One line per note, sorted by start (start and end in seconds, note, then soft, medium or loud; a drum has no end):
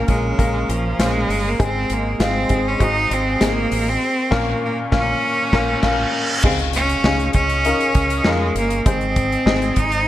0.00 1.61 A#2 medium
0.00 0.07 A#3 medium
0.00 0.07 C#4 medium
0.00 1.57 C#4 medium
0.00 0.08 F4 medium
0.00 0.08 A#4 medium
0.00 1.55 A#4 medium
0.00 1.57 F5 medium
0.00 1.55 A#5 medium
0.07 0.33 A#1 medium
0.07 0.71 G#3 medium
0.07 0.29 A#3 medium
0.07 0.29 C#4 medium
0.07 0.30 F4 medium
0.07 0.29 A#4 medium
0.07 kick medium
0.07 closed hi-hat medium
0.38 0.63 A#1 medium
0.38 0.81 A#3 medium
0.38 0.81 C#4 medium
0.38 0.81 F4 medium
0.38 0.81 A#4 medium
0.38 kick medium
0.38 closed hi-hat medium
0.69 0.94 A#1 medium
0.69 1.02 F3 medium
0.69 closed hi-hat medium
0.99 1.24 A#1 medium
0.99 1.49 G#3 loud
0.99 1.42 A#3 medium
0.99 1.42 C#4 medium
0.99 1.42 F4 medium
0.99 1.42 C5 medium
0.99 snare loud
0.99 closed hi-hat medium
1.28 1.54 G1 medium
1.28 open hi-hat medium
1.48 1.61 A#3 medium
1.59 1.84 G#1 loud
1.59 2.46 G#2 medium
1.59 2.03 G#3 medium
1.59 2.03 C4 medium
1.59 1.94 C4 medium
1.59 2.03 D#4 medium
1.59 3.99 G#4 medium
1.59 2.03 G#4 loud
1.59 3.99 C5 medium
1.59 3.99 D#5 medium
1.59 3.99 C6 medium
1.59 kick loud
1.59 closed hi-hat medium
1.90 2.15 G#1 medium
1.90 2.21 A#3 medium
1.90 closed hi-hat medium
2.20 2.45 G#1 medium
2.20 2.41 G#3 medium
2.20 2.41 C4 medium
2.20 2.70 C4 loud
2.20 2.41 D#4 medium
2.20 2.42 F4 medium
2.20 snare loud
2.20 closed hi-hat medium
2.49 2.75 G#1 medium
2.49 2.72 G#3 medium
2.49 2.71 C4 medium
2.49 2.72 D#4 medium
2.49 2.72 G#4 medium
2.49 kick medium
2.49 closed hi-hat medium
2.68 2.84 C#4 medium
2.79 3.05 G#1 loud
2.79 3.23 G#3 medium
2.79 3.23 C4 medium
2.79 3.23 D#4 medium
2.79 3.15 D#4 loud
2.79 3.24 F#4 medium
2.79 kick medium
2.79 closed hi-hat medium
3.11 3.36 G#1 loud
3.11 3.45 C4 medium
3.11 closed hi-hat medium
3.41 3.66 G#1 medium
3.41 3.84 G#3 medium
3.41 3.91 A#3 loud
3.41 3.84 C4 medium
3.41 3.84 D#4 medium
3.41 3.84 G#4 medium
3.41 snare loud
3.41 closed hi-hat medium
3.72 3.96 A1 medium
3.72 open hi-hat medium
3.89 4.37 C4 loud
4.02 6.42 A#4 medium
4.02 6.42 F5 medium
4.02 6.42 C#6 medium
4.31 4.52 A#1 loud
4.31 4.52 A#2 loud
4.31 4.52 A#3 loud
4.31 4.52 C#4 loud
4.31 4.52 F4 loud
4.31 4.52 A#4 loud
4.31 kick loud
4.31 snare loud
4.31 crash medium
4.35 4.64 A#3 loud
4.65 4.78 A#3 medium
4.92 5.13 A#1 loud
4.92 5.13 A#3 medium
4.92 5.13 C#4 medium
4.92 6.11 C#4 loud
4.92 5.13 F4 medium
4.92 kick loud
4.92 snare loud
5.23 reverse cymbal medium
5.53 5.74 A#1 loud
5.53 5.74 A#3 loud
5.53 5.74 C#4 loud
5.53 5.74 F4 loud
5.53 5.74 A#4 medium
5.53 kick loud
5.53 snare loud
5.83 6.04 A#1 medium
5.83 6.04 A#3 medium
5.83 6.04 C#4 medium
5.83 6.04 F4 loud
5.83 6.04 A#4 medium
5.83 kick medium
5.83 snare loud
5.83 crash medium
6.43 6.94 C#2 loud
6.43 7.31 C#3 medium
6.43 6.87 G#3 medium
6.43 6.59 C4 medium
6.43 6.87 D#4 medium
6.43 6.87 F4 medium
6.43 8.84 G#4 medium
6.43 6.87 G#4 medium
6.43 8.84 D#5 medium
6.43 8.84 F5 medium
6.43 8.84 C#6 medium
6.43 kick loud
6.43 crash loud
6.43 impact medium
6.59 closed hi-hat soft
6.73 7.31 C#4 medium
6.73 closed hi-hat medium
6.89 closed hi-hat soft
7.04 7.29 C#2 medium
7.04 7.48 C#4 medium
7.04 7.48 D#4 medium
7.04 7.48 F4 medium
7.04 7.48 G#4 medium
7.04 snare loud
7.19 closed hi-hat soft
7.33 7.72 C#2 loud
7.33 8.28 C#4 medium
7.33 kick medium
7.33 closed hi-hat medium
7.49 closed hi-hat soft
7.65 8.08 C#4 medium
7.65 8.09 D#4 medium
7.65 8.09 F4 medium
7.65 8.09 A#4 medium
7.65 closed hi-hat medium
7.80 closed hi-hat soft
7.95 8.20 C#2 medium
7.95 kick medium
7.95 closed hi-hat medium
8.10 closed hi-hat soft
8.24 8.50 F2 medium
8.24 8.56 G#3 medium
8.24 8.69 C#4 medium
8.24 8.69 D#4 medium
8.24 8.69 F4 medium
8.24 8.69 A#4 medium
8.24 snare loud
8.55 8.80 G1 medium
8.55 8.85 A#3 loud
8.55 closed hi-hat medium
8.70 closed hi-hat soft
8.86 9.36 G#1 loud
8.86 9.73 G#2 medium
8.86 9.29 C4 medium
8.86 9.80 C4 medium
8.86 9.29 D#4 medium
8.86 9.29 G#4 medium
8.86 9.29 C5 medium
8.86 10.08 C5 medium
8.86 10.08 D#5 medium
8.86 10.08 G#5 medium
8.86 10.08 D#6 medium
8.86 kick loud
8.86 closed hi-hat medium
9.01 closed hi-hat soft
9.16 kick medium
9.16 closed hi-hat medium
9.32 closed hi-hat soft
9.46 9.71 G#1 medium
9.46 9.90 C4 medium
9.46 9.89 D#4 medium
9.46 9.90 G#4 medium
9.46 9.90 D#5 medium
9.46 snare loud
9.62 closed hi-hat soft
9.76 10.08 G#1 medium
9.76 10.08 D#4 loud
9.76 kick medium
9.76 closed hi-hat medium
9.92 closed hi-hat soft